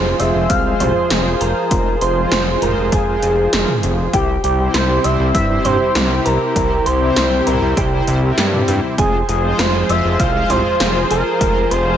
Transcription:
Already playing: F1 F3 G#3 F4 G#4 C5 C6
0.19 F1 G#3 F4 C5 E5 E6, closed hi-hat
0.35 F1
0.50 C2 F5 F6, kick, closed hi-hat
0.65 G#3 F4 C5
0.80 C2 C5 C6, closed hi-hat, mid tom
1.10 F1 G#3 F4 A#4, snare, closed hi-hat
1.34 C5 C6
1.41 F1 A#4 A#5, closed hi-hat
1.71 F1 G#3 F4 C5, kick, closed hi-hat
2.01 F1 C5 C6, closed hi-hat
2.16 G#3 F4 C5
2.32 F1 C5 C6, snare, closed hi-hat
2.62 F1 G#3 F4 A#4 C5 A#5, closed hi-hat, mid tom
2.77 F1
2.92 F1 G#4 G#5, kick, closed hi-hat
3.07 G#3 F4 C5
3.23 F1, closed hi-hat
3.53 F1 G#3 F4 A#4, snare, closed hi-hat
3.68 mid tom
3.83 F1, closed hi-hat
4.13 C2 C3 G3 C4 E4 G4 C5 G5, kick, closed hi-hat
4.44 C2 G4 G5, closed hi-hat
4.59 C3 G3 E4 C5
4.74 C2 C5 C6, snare, closed hi-hat
5.04 C2 C3 G3 E4 C5 E5 E6, closed hi-hat
5.20 C2
5.34 G2 E5 E6, kick, closed hi-hat
5.50 C3 G3 E4 C5
5.64 G2 C5 C6, closed hi-hat, mid tom
5.95 C2 C3 G3 E4 A#4, snare, closed hi-hat
6.25 C2 A#4 A#5, closed hi-hat
6.56 C2 C3 G3 E4 C5, kick, closed hi-hat
6.86 C2 C5 C6, closed hi-hat
7.01 C3 G3 E4 C5
7.16 C2 C5 C6, snare, closed hi-hat
7.46 C2 C3 G3 E4 A#4 C5 A#5, closed hi-hat, mid tom
7.62 C2
7.77 C2 G4 G5, kick, closed hi-hat
7.92 C3 G3 E4 C5
8.07 C2 C3 G3 E4 C5, closed hi-hat
8.23 C3 G3 E4 A#4
8.38 G2, snare, closed hi-hat
8.53 C3 G3 E4 C5, mid tom
8.68 G2, closed hi-hat
8.98 F1 F3 G#3 F4 G#4 C5 G#5, kick, closed hi-hat
9.29 F1 G#4 G#5, closed hi-hat
9.44 G#3 F4 C5
9.59 F1 C5 C6, snare, closed hi-hat
9.89 F1 G#3 F4 C5 E5 E6, closed hi-hat
10.05 F1
10.20 C2 F5 F6, kick, closed hi-hat
10.35 G#3 F4 C5
10.50 C2 C5 C6, closed hi-hat, mid tom
10.80 F1 G#3 F4 A#4, snare, closed hi-hat
11.10 F1 A#4 A#5, closed hi-hat
11.41 F1 G#3 F4 C5, kick, closed hi-hat
11.71 F1 C5 C6, closed hi-hat
11.86 G#3 F4 C5

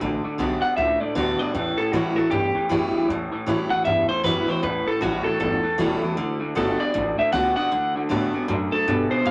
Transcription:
0.00 A1 D3 A3
0.24 D3 A3, muted upright bass stroke
0.38 B1 D3 A3 B3 D4 F#4
0.62 D3 B3 D4 F#4 F#5
0.77 C#2 A2 D3 A3 E5
1.00 D3 A3 D5, muted upright bass stroke
1.15 D2 D3 A3 B3 D4 F#4 B4
1.39 D3 B3 D4 F#4 D5, muted upright bass stroke
1.54 E2 A2 E3 B4
1.78 A2 E3 A4, muted upright bass stroke
1.92 A2 E3 F#3 G3 C#4 E4 F#4
2.16 A2 F#3 C#4 E4 A4, muted upright bass stroke
2.31 E2 G2 A2 E3 G4
2.55 A2 E3, muted upright bass stroke
2.69 F#2 A2 E3 F#3 G3 C#4 E4
2.94 A2 F#3, muted upright bass stroke
3.08 E2 A2 E3
3.32 A2 E3, muted upright bass stroke
3.46 A2 E3 F#3 G3 C#4 E4
3.70 A2 F#3 C#4 E4 F#5, muted upright bass stroke
3.85 E2 G2 A2 E3 E5
4.09 A2 E3 C5, muted upright bass stroke
4.24 F#2 A2 E3 F#3 G3 C#4 E4 B4
4.47 A2 F#3 C#4 E4 C5, muted upright bass stroke
4.63 E2 A2 E3 B4
4.86 A2 E3 A4, muted upright bass stroke
5.01 A1 A2 E3 F#3 G3 C#4 E4 F#4
5.24 A2 F#3 C#4 E4 A4, muted upright bass stroke
5.40 G1 E2 A2 E3 A4
5.63 A2 E3, muted upright bass stroke
5.78 E1 A2 E3 F#3 G3 C#4 E4
6.01 A2 F#3 C#4 E4, muted upright bass stroke
6.16 F#1 D3 A3
6.40 D3 A3, muted upright bass stroke
6.55 G1 D3 A3 B3 D4 F#4 A4
6.79 D3 B3 D4 F#4 D5
6.94 A1 A2 D3 A3
7.18 D3 A3 E5, muted upright bass stroke
7.32 C#2 D3 A3 B3 D4 F#4 F#5
7.56 D3 B3 D4 F#4 F#5, muted upright bass stroke
7.71 D2 D3 A3
7.96 D3 A3, muted upright bass stroke
8.09 A2 D3 A3 B3 D4 F#4
8.33 D3 B3 D4 F#4, muted upright bass stroke
8.48 F#2 D3 A3
8.72 D3 A3 A4, muted upright bass stroke
8.87 G2 B2 D3 B3
9.10 D3 B3 C5, muted upright bass stroke
9.25 A2 E3 F5

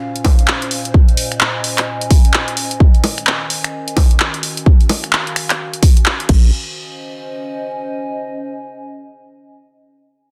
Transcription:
Already playing: A#2 C#4 C5 F5
0.16 closed hi-hat
0.25 kick, open hi-hat, high bongo
0.39 closed hi-hat
0.47 D#5, clap
0.60 G#5, closed hi-hat
0.71 open hi-hat
0.85 closed hi-hat
0.94 kick
1.09 closed hi-hat
1.17 open hi-hat
1.32 finger snap, closed hi-hat
1.41 clap
1.64 open hi-hat
1.78 finger snap, clap, closed hi-hat
2.01 closed hi-hat
2.11 kick, open hi-hat
2.25 closed hi-hat
2.34 clap
2.48 closed hi-hat
2.57 open hi-hat
2.71 closed hi-hat
2.80 D#3, kick
2.94 closed hi-hat
3.04 open hi-hat, high bongo
3.18 finger snap, closed hi-hat
3.27 clap
3.50 open hi-hat
3.64 finger snap, closed hi-hat
3.88 F#4, closed hi-hat
3.97 kick, open hi-hat, high bongo
4.11 closed hi-hat
4.20 clap
4.34 F5, closed hi-hat
4.43 open hi-hat
4.57 closed hi-hat
4.66 kick
4.81 closed hi-hat
4.89 open hi-hat, high bongo
5.04 finger snap, closed hi-hat
5.13 clap
5.27 closed hi-hat
5.36 finger snap, open hi-hat
5.50 finger snap, clap, closed hi-hat
5.74 closed hi-hat
5.83 kick, open hi-hat
5.97 closed hi-hat
6.06 clap
6.20 closed hi-hat
6.29 A#1 C#4, kick, crash
6.38 C5
6.68 D#5
6.74 G#5

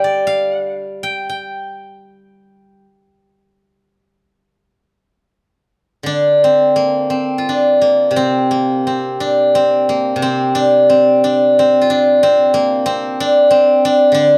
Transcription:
Already playing: D3 G3 C5 F5 G5
0.04 D5
0.27 F5
1.03 G5
1.29 G5
6.03 D3 D4
6.44 C4
6.76 A#3
7.10 C4
7.38 F4
7.49 D4
7.81 A#3
8.11 C3
8.16 C4
8.51 A#3
8.87 C4
9.20 D4
9.55 C4
9.89 A#3
10.16 C3
10.22 C4
10.55 D4
10.90 C4
11.24 D4
11.59 C4
11.81 F4
11.90 D4
12.23 C4
12.54 A#3
12.86 C4
13.20 D4
13.51 C4
13.85 D4
14.12 D3 D4

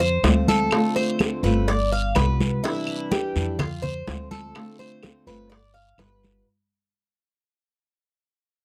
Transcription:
Already playing: F2
0.00 C5, high conga
0.23 D2 F3 A3 C4 F4, high bongo, low bongo, high conga, short guiro
0.48 A4, high conga, short guiro
0.71 D3 A3 C4 F4, high bongo, high conga, long guiro, claves
0.96 C5, high bongo, high conga
1.19 D3 A3 C4 F4, high bongo, high conga, short guiro, claves
1.43 G1 A3 C4 F4 B4, high bongo, high conga, short guiro
1.68 D5, muted steel-string acoustic guitar stroke, high bongo, high conga, long guiro
1.92 F5, high conga
2.15 C2 G3 B3 F4 B4, high bongo, low bongo, high conga, short guiro, claves
2.40 high bongo, high conga, short guiro
2.63 C3 E3 G3 D4 E4, high bongo, high conga, long guiro
2.87 high conga, claves
3.11 E3 G3 D4 E4 G4, high bongo, high conga, short guiro
3.36 F2 E3 G3 D4 E4, high conga, short guiro
3.59 F4, muted steel-string acoustic guitar stroke, high bongo, high conga, low conga, long guiro, claves
3.82 C5, high conga, low conga
4.07 D2 F3 A3 C4 F4, high bongo, low bongo, high conga, short guiro
4.31 A4, high conga, short guiro
4.55 D3 A3 C4 F4, high bongo, high conga, long guiro, claves
4.79 C5, high bongo, high conga
5.03 D3 A3 C4 F4, high bongo, high conga, short guiro, claves
5.26 G1 A3 C4 F4 B4, high bongo, high conga, short guiro
5.49 D5, muted steel-string acoustic guitar stroke, high bongo, high conga, long guiro
5.74 F5, high conga
5.98 G1 G3 B3 F4 B4, high bongo, low bongo, high conga, short guiro, claves
6.23 high bongo, high conga, short guiro

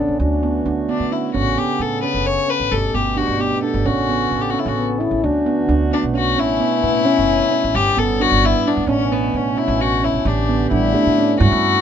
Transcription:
Already playing: C#3 B3 C#4 D4 A4
0.08 A1
0.19 D2 D3 A3 D4 F#4
0.43 B3
0.66 D2 D4
0.89 B3 D4
1.00 D3
1.12 C#4 E4
1.33 A1 C#3 B3 C#4 F#4 A4
1.58 B3 G4
1.79 A2 A4
2.03 C#4 B4
2.14 F#1
2.26 C#5
2.49 C#4 B4
2.60 A1
2.71 G1 B2 A3 G4 A4
2.94 G1 B3 G4
3.17 D4 F#4
3.28 G1
3.39 B3 G4
3.63 D4 A4
3.74 G1
3.85 A1 C#3 B3 C#4 F#4 A4
4.09 B3
4.31 A1
4.41 G4
4.50 C#4 F#4
4.59 E4
4.66 A1 F#4
4.76 B3
5.00 C#4 E4
5.11 A1
5.22 D2 D3 A3 D4 F#4
5.46 B3
5.69 D2 D4
5.91 B3 D4
6.03 B1
6.14 C#4 F#4
6.37 A1 B2 C#4 E4
6.60 B3
6.78 A#3
6.83 A2 B3
7.05 C#4
7.18 F#1
7.51 C#4
7.64 A1
7.74 G1 A2 G3 B3 G4
7.97 G1 B3 A4
8.20 D4 F#4
8.32 G1
8.43 B3 E4
8.65 D4
8.77 G1
8.87 A1 B2 A3 C#4
9.12 B3
9.34 A1 C#4
9.57 C#4 E4
9.68 A1
9.81 F#4
10.03 C#4 E4
10.14 A1
10.25 A1 D3 D4 G4
10.49 B3
10.71 A1 G3 D4 E4
10.95 A3 D4
11.07 A2
11.18 C#4
11.40 G2 E4 F#4

